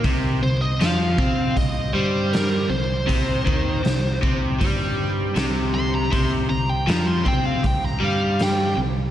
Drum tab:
HH |o-o-o-o-|o-o-o-o-|o-o-o-o-|
SD |--o---o-|--o---o-|--o---o-|
BD |o--oo---|oo-oo---|o--oo---|